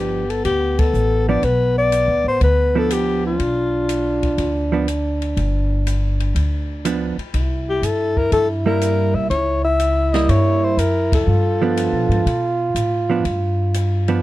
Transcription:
0.00 0.41 G1 medium
0.00 0.23 F3 soft
0.00 0.23 B3 soft
0.00 3.41 B3 medium
0.00 0.24 D4 soft
0.00 0.31 G4 medium
0.30 0.44 A4 medium
0.30 ride soft
0.45 0.91 D2 medium
0.45 0.80 G4 medium
0.45 kick soft
0.45 ride medium
0.79 1.28 A4 medium
0.79 kick medium
0.79 ride medium
0.93 1.40 A1 medium
0.93 hi-hat pedal medium
1.29 1.42 F3 soft
1.29 1.43 B3 medium
1.29 1.43 D4 soft
1.29 1.46 D5 medium
1.42 2.05 B1 medium
1.42 1.77 B4 medium
1.42 kick soft
1.42 ride soft
1.78 2.23 D5 medium
1.92 hi-hat pedal medium
1.92 ride medium
2.08 2.23 D2 medium
2.24 2.40 A1 medium
2.28 2.42 C5 medium
2.41 3.36 D2 medium
2.41 2.80 B4 medium
2.41 kick soft
2.41 ride soft
2.75 3.37 F3 medium
2.75 3.37 B3 medium
2.75 3.38 D4 medium
2.75 2.94 A4 medium
2.90 3.26 G4 medium
2.90 hi-hat pedal medium
2.90 ride medium
3.26 4.69 F4 medium
3.39 4.34 B1 medium
3.39 7.18 D4 medium
3.39 kick soft
3.39 ride soft
3.89 hi-hat pedal soft
3.89 ride medium
4.23 kick soft
4.23 ride soft
4.38 5.33 D2 medium
4.38 kick soft
4.38 ride soft
4.72 4.86 F3 soft
4.72 4.87 B3 medium
4.72 4.87 D4 medium
4.88 hi-hat pedal soft
4.88 ride medium
5.22 ride soft
5.37 6.31 G1 medium
5.37 kick soft
5.37 ride soft
5.87 hi-hat pedal soft
5.87 ride medium
6.20 ride soft
6.35 7.14 D2 medium
6.35 kick soft
6.35 ride medium
6.85 7.15 F3 soft
6.85 7.16 B3 soft
6.85 7.16 D4 soft
6.85 hi-hat pedal medium
6.85 ride medium
7.18 muted upright bass stroke soft
7.18 ride soft
7.34 7.79 C2 medium
7.34 9.27 E4 medium
7.34 kick soft
7.34 ride medium
7.69 7.86 G4 medium
7.82 8.28 G2 medium
7.82 8.19 A4 medium
7.82 hi-hat pedal soft
7.82 ride medium
8.17 8.33 A#4 medium
8.17 kick soft
8.32 9.11 G2 medium
8.32 8.48 A4 medium
8.32 kick soft
8.32 ride medium
8.66 9.27 G3 medium
8.66 9.28 A#3 medium
8.66 9.28 E4 medium
8.66 9.16 A#4 medium
8.81 hi-hat pedal medium
8.81 ride medium
9.14 9.29 C2 medium
9.14 9.29 E5 medium
9.30 10.25 C#2 medium
9.30 11.28 E4 medium
9.30 9.62 C#5 medium
9.30 kick soft
9.30 ride soft
9.64 10.15 E5 loud
9.79 hi-hat pedal soft
9.79 ride medium
10.13 10.76 G3 soft
10.13 10.76 A#3 soft
10.13 10.76 E4 medium
10.13 10.31 D#5 medium
10.13 snare soft
10.13 ride soft
10.29 10.75 G2 medium
10.29 10.65 C#5 medium
10.29 kick soft
10.29 ride medium
10.64 10.80 C5 medium
10.77 11.24 F#2 medium
10.77 11.13 A#4 medium
10.77 hi-hat pedal soft
10.77 ride medium
11.12 12.57 A4 medium
11.12 kick medium
11.12 ride medium
11.27 11.89 G2 medium
11.27 14.22 F4 medium
11.62 12.23 F3 medium
11.62 12.24 B3 medium
11.62 12.24 D4 medium
11.77 hi-hat pedal soft
11.77 ride medium
11.93 12.08 B2 medium
12.09 12.24 G#2 medium
12.09 ride soft
12.26 12.72 B2 medium
12.26 kick soft
12.26 ride medium
12.75 13.21 A2 medium
12.75 hi-hat pedal soft
12.75 ride medium
13.10 13.23 F3 soft
13.10 13.24 B3 soft
13.10 13.24 D4 medium
13.24 14.19 G2 medium
13.24 kick soft
13.24 ride soft
13.74 hi-hat pedal soft
13.74 ride medium
14.08 14.22 F3 soft
14.08 14.22 B3 medium
14.08 14.22 D4 medium
14.08 ride soft

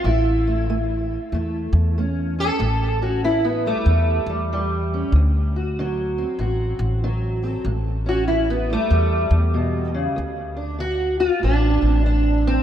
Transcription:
0.04 1.16 A1 medium
0.04 0.65 A2 medium
0.04 1.96 E4 medium
0.47 0.69 A3 soft
0.70 1.28 A3 medium
1.32 1.68 E2 medium
1.32 1.92 A2 medium
1.32 1.97 A3 soft
1.73 2.48 E2 medium
1.98 2.56 A3 medium
1.98 2.37 C#4 soft
2.39 2.58 C#4 soft
2.39 3.02 A4 loud
2.59 3.71 A1 loud
2.59 3.18 A2 medium
3.02 3.44 C#4 soft
3.02 3.23 F#4 medium
3.24 3.82 E3 medium
3.24 3.45 E4 medium
3.45 3.66 B3 medium
3.66 4.28 G3 medium
3.66 4.30 A3 loud
3.86 4.21 E2 loud
3.90 4.47 E2 medium
4.26 5.02 E2 medium
4.26 4.51 G3 soft
4.53 5.10 E3 medium
4.53 5.12 G3 medium
4.94 5.12 C#4 soft
5.12 6.23 D2 loud
5.12 5.73 D2 medium
5.56 6.40 F#4 soft
5.79 6.36 D3 medium
5.79 7.02 F#3 medium
6.18 7.42 C4 soft
6.39 6.74 A1 medium
6.39 6.98 A2 medium
6.39 7.46 F#4 medium
6.79 7.54 A1 medium
7.04 7.62 D3 medium
7.04 7.66 F#3 soft
7.44 7.63 C4 soft
7.44 8.08 A4 loud
7.65 8.75 A1 medium
7.65 8.24 A2 medium
8.06 8.50 C#4 medium
8.06 8.27 F#4 medium
8.28 8.87 E3 medium
8.28 8.49 E4 medium
8.50 8.71 B3 medium
8.70 8.91 G3 soft
8.70 9.35 A3 loud
8.91 9.26 E2 medium
8.91 9.49 E2 medium
8.91 10.15 G3 medium
9.31 10.06 E2 loud
9.54 9.94 B2 medium
9.94 10.17 C#3 medium
10.16 10.75 D2 medium
10.16 11.28 D2 medium
10.57 10.80 D4 soft
10.79 11.38 D3 medium
10.79 11.20 F#4 loud
11.20 11.43 F4 loud
11.39 11.78 A1 medium
11.39 12.00 A2 medium
11.44 12.05 D4 medium
11.82 12.57 A1 medium
11.82 12.47 C4 soft
12.04 12.63 D3 medium
12.04 12.63 D4 medium
12.47 12.63 C4 medium

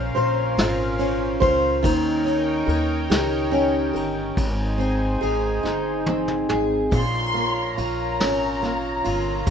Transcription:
0.00 0.12 A#1 loud
0.00 1.84 A#2 medium
0.00 0.98 C#4 medium
0.00 1.82 C#4 medium
0.00 1.82 A#4 medium
0.00 1.80 C5 medium
0.00 1.82 F5 medium
0.15 0.55 A#1 loud
0.15 1.39 C5 medium
0.15 ride medium
0.57 1.38 G#1 medium
0.57 1.92 F4 medium
0.57 snare loud
0.57 ride medium
0.99 2.24 C#4 medium
0.99 ride soft
1.40 1.82 C#2 loud
1.40 1.92 C5 medium
1.40 kick loud
1.40 ride medium
1.83 2.65 D#2 loud
1.83 5.33 D#3 medium
1.83 4.34 D#4 medium
1.83 4.34 A#4 medium
1.83 4.34 C#5 medium
1.83 4.35 G5 medium
1.83 kick loud
1.83 ride medium
2.24 3.50 C#4 medium
2.24 ride soft
2.67 3.08 D#2 loud
2.67 3.92 A#4 medium
2.67 ride medium
3.10 3.90 C#2 medium
3.10 4.45 G4 medium
3.10 snare loud
3.10 ride medium
3.51 4.45 C#4 medium
3.51 ride soft
3.93 4.34 G1 loud
3.93 4.45 A#4 medium
3.93 ride medium
4.37 5.18 G#1 loud
4.37 6.89 D#4 medium
4.37 6.90 G#4 medium
4.37 6.90 C5 medium
4.37 6.89 G#5 medium
4.37 kick loud
4.37 ride medium
4.78 6.06 C4 medium
4.78 ride soft
5.21 5.62 G#1 medium
5.21 6.48 G#4 medium
5.21 ride medium
5.63 6.45 G1 medium
5.63 7.00 D#4 medium
5.63 snare medium
6.06 7.01 C4 medium
6.06 high tom medium
6.28 mid tom medium
6.49 6.90 G#1 medium
6.49 7.00 G#4 medium
6.49 mid tom loud
6.91 7.73 A#1 loud
6.91 9.46 A#2 medium
6.91 9.45 F4 medium
6.91 9.45 A#4 medium
6.91 9.45 C#5 medium
6.91 9.45 A#5 medium
6.91 7.74 C6 loud
6.91 kick loud
6.91 ride medium
7.34 8.61 A#3 medium
7.34 ride soft
7.77 8.18 A#1 loud
7.77 9.04 F4 medium
7.77 9.47 A#5 medium
7.77 ride medium
8.20 9.02 G#1 medium
8.20 9.50 C#4 medium
8.20 snare loud
8.20 ride medium
8.62 9.50 A#3 medium
8.62 snare soft
8.62 ride soft
9.04 9.45 G1 loud
9.04 9.50 F4 medium
9.04 ride medium
9.46 9.50 F1 loud
9.46 9.50 F2 medium
9.46 kick loud
9.46 ride medium

